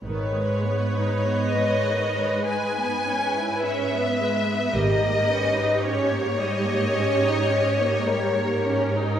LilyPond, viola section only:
\new Staff \with { instrumentName = "Viola section" } { \time 4/4 \key gis \minor \tempo 4 = 53 << { b'1 | g'1 | } \\ { dis16 gis16 b16 dis'16 b16 gis16 dis16 gis16 gis16 b16 cis'16 e'16 cis'16 b16 gis16 b16 | g16 ais16 cis'16 dis'16 cis'16 ais16 g16 ais16 cis'16 dis'16 cis'16 ais16 g16 ais16 cis'16 dis'16 | } >> }